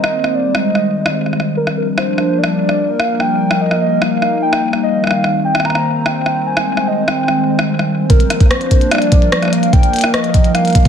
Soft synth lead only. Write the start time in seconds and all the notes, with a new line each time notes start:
Already playing: D#5
0.35 D5
0.55 D#5
1.57 A#4
1.77 A#4
1.98 C5
2.38 D5
3.00 F5
3.20 G5
3.61 D#5
3.81 D#5
4.02 F5
4.43 G5
4.83 D#5
5.04 F5
5.45 G5
5.65 A#5
6.06 G5
6.47 G#5
6.88 D#5
7.08 G5
8.10 A#4
8.51 C5
8.91 D5
9.53 F5
9.73 G5
10.14 D#5
10.55 F5